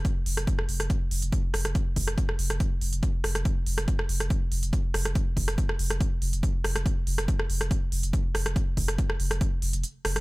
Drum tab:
HH |x-oxx-oxx-oxx-ox|x-oxx-oxx-oxx-ox|x-oxx-oxx-oxx-ox|x-oxx-oxx-oxx-ox|
SD |---r-r-r------rr|---r-r-r------rr|---r-r-r------rr|---r-r-r------rr|
BD |o---o---o---o---|o-o-o---o---o---|o---o---o---o---|o-o-o---o---o---|

HH |x-oxx-oxx-oxx-ox|x-oxx-oxx-oxx-ox|
SD |---r-r-r------rr|---r-r-r------rr|
BD |o---o---o---o---|o-o-o---o-------|